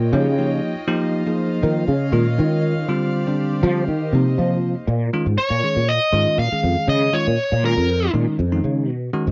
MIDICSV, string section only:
0, 0, Header, 1, 2, 480
1, 0, Start_track
1, 0, Tempo, 499584
1, 849, Time_signature, 4, 2, 24, 8
1, 8952, End_track
2, 0, Start_track
2, 0, Title_t, "String section"
2, 0, Program_c, 0, 48
2, 0, Note_on_c, 0, 65, 73
2, 0, Note_on_c, 0, 73, 64
2, 0, Note_on_c, 0, 75, 71
2, 0, Note_on_c, 0, 79, 79
2, 826, Note_off_c, 0, 65, 0
2, 830, Note_on_c, 0, 77, 90
2, 836, Note_on_c, 0, 72, 67
2, 838, Note_on_c, 0, 65, 77
2, 840, Note_off_c, 0, 73, 0
2, 840, Note_off_c, 0, 79, 0
2, 1782, Note_off_c, 0, 75, 0
2, 1788, Note_off_c, 0, 65, 0
2, 1792, Note_off_c, 0, 72, 0
2, 1794, Note_on_c, 0, 75, 68
2, 1800, Note_on_c, 0, 65, 68
2, 1804, Note_on_c, 0, 73, 62
2, 2751, Note_off_c, 0, 75, 0
2, 2754, Note_off_c, 0, 65, 0
2, 2756, Note_off_c, 0, 73, 0
2, 2756, Note_on_c, 0, 74, 60
2, 2757, Note_on_c, 0, 67, 81
2, 2758, Note_on_c, 0, 72, 68
2, 3713, Note_off_c, 0, 74, 0
2, 3714, Note_off_c, 0, 72, 0
2, 3732, Note_on_c, 0, 75, 66
2, 3733, Note_on_c, 0, 72, 60
2, 4642, Note_off_c, 0, 77, 0
2, 4665, Note_off_c, 0, 67, 0
2, 4682, Note_off_c, 0, 75, 0
2, 4683, Note_off_c, 0, 72, 0
2, 8952, End_track
0, 0, End_of_file